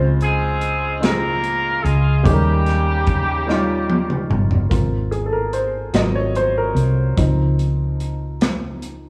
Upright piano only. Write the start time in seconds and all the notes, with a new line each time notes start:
Already playing: C#3 G#3 C4 F4 C5
1.01 C#3 G#3 F4 G4
1.09 G#4
2.23 D#3 G3 C#4 D#4 G#4
2.33 A#4
3.47 G3 C#4 D#4
3.51 F4
4.69 A#3 C4 F4
5.11 G#4
5.26 A4
5.33 A#4
5.53 C5
5.93 F#3 A#3 C4 F4 D#5
6.15 C#5
6.36 C5
6.58 A#4
7.17 F3 C4 D#4